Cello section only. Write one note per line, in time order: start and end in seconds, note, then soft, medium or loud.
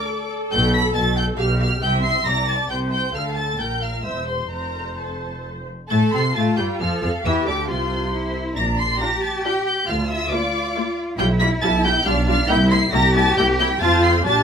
0.52 0.91 B2 loud
0.95 1.34 B2 medium
1.40 1.78 B2 loud
1.82 2.22 C3 loud
2.27 2.65 C3 medium
2.71 3.10 C3 medium
3.15 3.56 D3 medium
3.60 4.05 A#2 medium
4.05 4.52 E2 medium
4.51 5.68 F2 medium
5.91 6.33 A4 medium
6.35 6.79 F4 medium
6.80 7.25 A4 medium
7.25 7.68 G4 medium
7.69 8.13 F4 medium
8.14 8.56 E4 medium
8.57 9.01 D4 medium
9.01 9.88 G4 loud
9.88 11.19 F4 medium
11.19 12.04 E4 loud
12.06 12.48 D4 loud
12.49 12.93 E4 loud
12.93 13.80 G4 loud
13.82 14.25 F4 loud
14.26 14.43 D4 loud